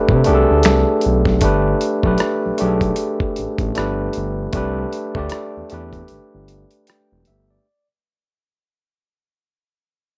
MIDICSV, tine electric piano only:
0, 0, Header, 1, 2, 480
1, 0, Start_track
1, 0, Tempo, 779221
1, 872, Time_signature, 4, 2, 24, 8
1, 6267, End_track
2, 0, Start_track
2, 0, Title_t, "Tine electric piano"
2, 0, Program_c, 0, 4
2, 0, Control_c, 0, 64, 127
2, 0, Note_on_c, 0, 57, 76
2, 0, Note_on_c, 0, 62, 72
2, 0, Note_on_c, 0, 67, 66
2, 0, Note_on_c, 0, 69, 102
2, 0, Note_on_c, 0, 71, 90
2, 85, Note_off_c, 0, 57, 0
2, 89, Note_off_c, 0, 62, 0
2, 93, Note_off_c, 0, 67, 0
2, 96, Note_off_c, 0, 71, 0
2, 150, Note_on_c, 0, 57, 80
2, 159, Note_on_c, 0, 62, 82
2, 166, Note_on_c, 0, 67, 89
2, 173, Note_on_c, 0, 68, 76
2, 210, Note_off_c, 0, 68, 0
2, 214, Note_off_c, 0, 69, 0
2, 214, Note_on_c, 0, 69, 94
2, 773, Note_off_c, 0, 57, 0
2, 777, Note_off_c, 0, 62, 0
2, 781, Note_off_c, 0, 67, 0
2, 804, Note_off_c, 0, 69, 0
2, 870, Note_on_c, 0, 57, 83
2, 877, Note_on_c, 0, 62, 86
2, 879, Control_c, 0, 64, 0
2, 886, Note_on_c, 0, 67, 80
2, 893, Note_on_c, 0, 71, 90
2, 998, Control_c, 0, 64, 127
2, 1182, Note_off_c, 0, 57, 0
2, 1185, Note_off_c, 0, 62, 0
2, 1190, Note_off_c, 0, 67, 0
2, 1193, Note_off_c, 0, 71, 0
2, 1253, Note_on_c, 0, 57, 74
2, 1262, Note_on_c, 0, 62, 64
2, 1269, Note_on_c, 0, 67, 66
2, 1276, Note_on_c, 0, 71, 82
2, 1542, Note_off_c, 0, 57, 0
2, 1547, Note_off_c, 0, 62, 0
2, 1550, Note_off_c, 0, 67, 0
2, 1554, Note_off_c, 0, 71, 0
2, 1590, Note_on_c, 0, 57, 71
2, 1598, Note_on_c, 0, 62, 70
2, 1605, Note_on_c, 0, 67, 71
2, 1613, Note_on_c, 0, 68, 64
2, 1650, Note_off_c, 0, 68, 0
2, 1651, Note_on_c, 0, 69, 82
2, 2302, Note_off_c, 0, 57, 0
2, 2308, Note_off_c, 0, 62, 0
2, 2309, Note_on_c, 0, 57, 75
2, 2315, Note_off_c, 0, 67, 0
2, 2315, Note_on_c, 0, 62, 77
2, 2321, Control_c, 0, 64, 0
2, 2322, Note_on_c, 0, 67, 69
2, 2332, Note_on_c, 0, 71, 85
2, 2341, Note_off_c, 0, 69, 0
2, 2442, Control_c, 0, 64, 127
2, 2725, Note_off_c, 0, 57, 0
2, 2728, Note_off_c, 0, 62, 0
2, 2732, Note_off_c, 0, 67, 0
2, 2736, Note_off_c, 0, 71, 0
2, 2791, Note_on_c, 0, 57, 90
2, 2798, Note_on_c, 0, 62, 80
2, 2799, Control_c, 0, 64, 0
2, 2806, Note_on_c, 0, 67, 77
2, 2815, Note_on_c, 0, 71, 98
2, 2911, Control_c, 0, 64, 127
2, 3102, Note_off_c, 0, 57, 0
2, 3106, Note_off_c, 0, 62, 0
2, 3110, Note_off_c, 0, 67, 0
2, 3114, Note_off_c, 0, 71, 0
2, 3172, Note_on_c, 0, 57, 82
2, 3180, Note_on_c, 0, 62, 71
2, 3187, Note_on_c, 0, 67, 75
2, 3196, Note_on_c, 0, 74, 82
2, 3462, Note_off_c, 0, 57, 0
2, 3466, Note_off_c, 0, 62, 0
2, 3469, Note_off_c, 0, 67, 0
2, 3474, Note_off_c, 0, 74, 0
2, 3511, Note_on_c, 0, 57, 66
2, 3518, Note_on_c, 0, 62, 64
2, 3525, Note_on_c, 0, 67, 68
2, 3535, Note_on_c, 0, 71, 81
2, 3926, Note_off_c, 0, 57, 0
2, 3930, Note_off_c, 0, 62, 0
2, 3933, Note_off_c, 0, 67, 0
2, 3938, Note_off_c, 0, 71, 0
2, 4240, Note_on_c, 0, 79, 49
2, 4464, Note_off_c, 0, 79, 0
2, 4481, Note_on_c, 0, 76, 53
2, 4611, Note_off_c, 0, 76, 0
2, 4623, Note_on_c, 0, 74, 56
2, 4719, Control_c, 0, 64, 0
2, 4846, Note_off_c, 0, 74, 0
2, 6267, End_track
0, 0, End_of_file